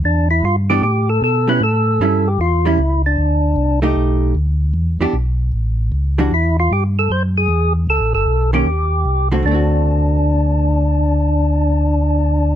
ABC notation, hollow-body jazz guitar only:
X:1
M:4/4
L:1/8
Q:"Swing" 1/4=153
K:Dmix
V:1 name="Hollow-body jazz guitar"
z3 [E,B,DG] z3 [G,^CE] | z2 [G,^CE] z2 [G,CE] z2 | z3 [A,_EG]3 z2 | z [E,B,DG] z4 z [E,G,DF] |
z8 | z3 [_E,_B,^CG] z3 [D,A,=CF] | [D,A,CF]8- | [D,A,CF]8 |]